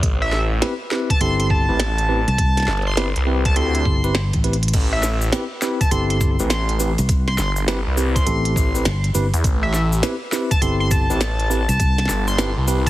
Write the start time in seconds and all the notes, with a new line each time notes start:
0.03 A1, kick, closed hi-hat
0.22 E5
0.33 snare
0.62 C4 E4 G4 B4, snare, closed hi-hat
0.91 C4 E4 G4 B4, snare
1.10 A5, kick, closed hi-hat
1.21 G1 C4 E4 G4 A4 C6, closed hi-hat
1.40 C6, closed hi-hat
1.50 A5, kick
1.69 A1 C4 E4 G4 B4
1.80 snare, closed hi-hat
1.98 closed hi-hat
2.09 C4 E4 G4 B4
2.28 C2 A5, closed hi-hat
2.38 kick, closed hi-hat
2.57 snare, closed hi-hat
2.60 snare
2.62 snare
2.65 G1, snare
2.68 snare
2.73 snare
2.77 snare
2.82 snare
2.87 C6
2.97 C4 E4 G4 B4, snare, closed hi-hat
3.16 C2, closed hi-hat
3.27 C4 E4 G4 B4
3.45 A5, kick, closed hi-hat
3.56 D2 C4 E4 G4 A4 C6, closed hi-hat
3.75 closed hi-hat
3.85 G1, kick
4.04 C4 E4 G4 B4, closed hi-hat
4.15 snare
4.33 A1, kick, closed hi-hat
4.44 C4 E4 G4 B4, closed hi-hat
4.53 closed hi-hat
4.63 closed hi-hat
4.68 closed hi-hat
4.73 A1, kick, closed hi-hat, crash, cabasa
4.93 E5
5.03 snare, cabasa
5.21 cabasa
5.32 C4 E4 G4 B4, snare, closed hi-hat, cabasa
5.62 C4 E4 G4 B4, snare, cabasa
5.81 A5, kick, closed hi-hat, cabasa
5.91 G1 C4 E4 G4 A4 C6, closed hi-hat, cabasa
6.10 C6, closed hi-hat
6.21 kick, cabasa
6.39 A1 C4 E4 G4 B4, cabasa
6.50 C6, snare, closed hi-hat, cabasa
6.69 closed hi-hat
6.80 C4 E4 G4 B4, cabasa
6.98 C2, closed hi-hat, cabasa
7.09 kick, closed hi-hat, cabasa
7.28 C6, snare
7.38 G1 C6, snare, cabasa
7.56 cabasa
7.68 C4 E4 G4 B4, snare, closed hi-hat, cabasa
7.87 C2
7.97 C4 E4 G4 B4, cabasa
8.15 C6, kick, closed hi-hat, cabasa
8.26 A1 C4 E4 G4 A4, closed hi-hat, cabasa
8.45 closed hi-hat
8.56 A1, kick, cabasa
8.75 C4 E4 G4 B4, cabasa
8.85 G1, snare, closed hi-hat, cabasa
9.04 closed hi-hat
9.15 G1 C4 E4 G4 B4, cabasa
9.34 E2, closed hi-hat, cabasa
9.44 A1, kick, closed hi-hat, cabasa
9.63 E5
9.74 snare, cabasa
9.92 cabasa
10.03 C4 E4 G4 B4, snare, closed hi-hat, cabasa
10.32 C4 E4 G4 B4, snare, cabasa
10.51 A5, kick, closed hi-hat, cabasa
10.62 G1 C4 E4 G4 A4 C6, closed hi-hat, cabasa
10.80 C6
10.91 A5, kick, closed hi-hat, cabasa
11.10 A1 C4 E4 G4 B4, cabasa
11.21 snare, closed hi-hat, cabasa
11.40 closed hi-hat
11.50 C4 E4 G4 B4, cabasa
11.69 C2 A5, closed hi-hat, cabasa
11.80 kick, closed hi-hat, cabasa
11.98 snare, closed hi-hat
12.05 snare
12.09 G1, snare, cabasa
12.28 C6, cabasa
12.38 C4 E4 G4 B4, snare, closed hi-hat, cabasa
12.57 C2
12.68 C4 E4 G4 B4, cabasa
12.87 A5, kick, closed hi-hat